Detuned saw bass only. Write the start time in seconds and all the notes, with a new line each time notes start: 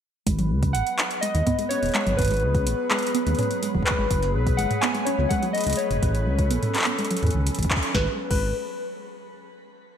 0.27 G#1
0.51 C#2
0.75 G#1
1.35 D#2
1.83 D#1
2.07 G#1
2.19 G#1
2.43 C#2
2.67 G#1
3.27 D#2
3.75 D#1
3.99 G#1
4.11 F#1
4.35 B1
4.59 F#1
5.19 C#2
5.67 C#2
5.91 F#1
6.03 A1
6.27 C#2
6.51 A1
7.23 E2
7.35 C#2
7.59 A1
7.95 G#1
8.31 G#1